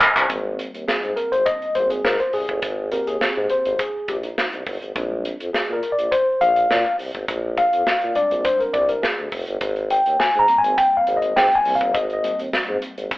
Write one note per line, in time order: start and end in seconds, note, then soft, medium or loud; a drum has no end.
0.01 clap loud
0.16 0.27 C2 medium
0.16 clap medium
0.29 0.66 G#1 loud
0.29 1.74 G3 medium
0.29 1.74 A#3 medium
0.29 1.74 C4 medium
0.29 kick loud
0.29 closed hi-hat loud
0.59 closed hi-hat medium
0.74 0.85 D#2 medium
0.74 closed hi-hat soft
0.88 0.94 G#2 soft
0.88 1.18 G#4 medium
0.88 snare loud
1.03 1.15 G#2 medium
1.03 closed hi-hat soft
1.17 1.33 A#4 medium
1.17 closed hi-hat medium
1.32 1.44 G#1 medium
1.32 1.46 C5 loud
1.32 closed hi-hat medium
1.46 1.76 D#5 loud
1.46 kick loud
1.46 closed hi-hat loud
1.62 closed hi-hat soft
1.75 1.99 G#1 medium
1.75 2.01 G3 soft
1.75 2.01 A#3 soft
1.75 2.02 C4 medium
1.75 1.90 C5 medium
1.75 closed hi-hat medium
1.90 2.05 G#4 medium
1.90 closed hi-hat medium
2.05 2.17 G#2 loud
2.05 2.19 A#4 loud
2.05 snare loud
2.20 2.34 C5 medium
2.20 closed hi-hat soft
2.33 2.46 C2 medium
2.33 2.88 G#4 medium
2.33 open hi-hat medium
2.49 2.60 G1 medium
2.49 kick medium
2.49 closed hi-hat soft
2.62 2.99 G#1 loud
2.62 kick loud
2.62 closed hi-hat loud
2.91 3.75 A#3 medium
2.91 3.76 C4 medium
2.91 3.75 G4 medium
2.91 3.08 A#4 medium
2.91 closed hi-hat medium
3.07 3.18 D#2 medium
3.07 3.52 G#4 medium
3.07 closed hi-hat medium
3.21 3.27 G#2 soft
3.21 snare loud
3.37 3.48 G#2 loud
3.50 3.80 C5 medium
3.50 closed hi-hat medium
3.65 3.77 G#1 medium
3.65 closed hi-hat medium
3.79 4.09 G#4 medium
3.79 kick loud
3.79 closed hi-hat loud
4.08 4.32 A#1 medium
4.08 4.16 G4 medium
4.08 kick medium
4.08 closed hi-hat medium
4.23 4.78 D#4 medium
4.23 closed hi-hat medium
4.38 snare loud
4.53 4.64 C2 medium
4.53 closed hi-hat soft
4.66 4.79 G1 medium
4.66 kick loud
4.66 open hi-hat medium
4.82 4.93 G#1 medium
4.82 closed hi-hat soft
4.95 5.32 A#1 loud
4.95 5.35 G3 medium
4.95 5.35 G#3 medium
4.95 5.35 C4 medium
4.95 5.35 D4 medium
4.95 kick loud
4.95 closed hi-hat loud
5.25 closed hi-hat medium
5.40 5.51 F2 medium
5.40 closed hi-hat medium
5.53 5.60 A#2 soft
5.53 5.74 G#4 medium
5.53 snare loud
5.69 5.80 A#2 medium
5.69 5.93 A#4 medium
5.83 closed hi-hat medium
5.92 6.12 D5 medium
5.98 6.10 A#1 medium
5.98 closed hi-hat medium
6.12 6.42 C5 loud
6.12 kick loud
6.12 closed hi-hat loud
6.41 6.65 A#1 medium
6.41 6.95 F5 loud
6.41 closed hi-hat medium
6.56 closed hi-hat medium
6.70 6.83 A#2 loud
6.70 snare loud
6.86 closed hi-hat soft
6.99 7.12 C2 medium
6.99 open hi-hat medium
7.15 7.26 G#1 medium
7.15 kick medium
7.15 closed hi-hat soft
7.28 7.65 A#1 loud
7.28 kick loud
7.28 closed hi-hat loud
7.58 8.18 F5 loud
7.58 kick loud
7.58 closed hi-hat medium
7.73 7.84 F2 medium
7.73 closed hi-hat medium
7.87 7.93 A#2 soft
7.87 snare loud
8.01 8.14 A#2 medium
8.01 closed hi-hat soft
8.15 8.99 G3 medium
8.15 8.99 G#3 medium
8.15 8.99 C4 soft
8.15 8.99 D4 medium
8.15 8.46 D5 loud
8.15 closed hi-hat medium
8.31 8.43 A#1 loud
8.31 closed hi-hat medium
8.45 8.61 C5 loud
8.45 kick loud
8.45 closed hi-hat loud
8.60 8.74 A#4 medium
8.60 closed hi-hat soft
8.74 8.98 C2 medium
8.74 8.88 D5 medium
8.74 kick loud
8.74 closed hi-hat medium
8.89 9.03 A#4 medium
8.89 closed hi-hat medium
9.02 9.30 G#4 medium
9.02 snare loud
9.19 9.30 D2 medium
9.32 9.45 F1 medium
9.32 kick medium
9.32 open hi-hat medium
9.47 9.59 G1 medium
9.47 closed hi-hat soft
9.61 9.98 G#1 loud
9.61 kick loud
9.61 closed hi-hat loud
9.76 closed hi-hat soft
9.90 10.18 G5 medium
9.90 closed hi-hat medium
10.06 10.17 D#2 medium
10.06 closed hi-hat medium
10.19 10.26 G#2 soft
10.19 10.40 G#5 loud
10.19 snare loud
10.34 10.46 G#2 loud
10.34 closed hi-hat soft
10.39 10.59 A#5 loud
10.48 11.64 G3 medium
10.48 11.64 A#3 medium
10.48 11.65 C4 medium
10.48 closed hi-hat medium
10.58 10.79 G#5 loud
10.64 10.75 G#1 medium
10.64 closed hi-hat medium
10.78 10.96 G5 loud
10.78 kick loud
10.78 closed hi-hat loud
10.97 11.17 F5 medium
11.07 11.31 G#1 loud
11.07 closed hi-hat medium
11.17 11.37 D#5 medium
11.22 closed hi-hat medium
11.36 11.49 G#2 loud
11.36 11.56 G5 loud
11.36 snare loud
11.52 11.76 G#5 loud
11.52 closed hi-hat soft
11.65 11.78 C2 medium
11.65 11.91 G3 medium
11.65 11.92 A#3 soft
11.65 11.92 C4 medium
11.65 open hi-hat medium
11.75 11.95 F5 medium
11.81 11.92 G1 medium
11.81 kick medium
11.81 closed hi-hat soft
11.94 12.31 G#1 loud
11.94 12.12 D#5 medium
11.94 kick loud
11.94 closed hi-hat loud
12.10 12.41 D#5 medium
12.10 closed hi-hat soft
12.23 13.18 G3 medium
12.23 13.18 A#3 medium
12.23 13.18 C4 medium
12.23 closed hi-hat medium
12.39 12.51 D#2 medium
12.39 closed hi-hat medium
12.53 12.59 G#2 soft
12.53 snare loud
12.69 12.80 G#2 loud
12.82 closed hi-hat medium
12.97 13.09 G#1 medium
12.97 closed hi-hat medium
13.11 kick loud
13.11 closed hi-hat loud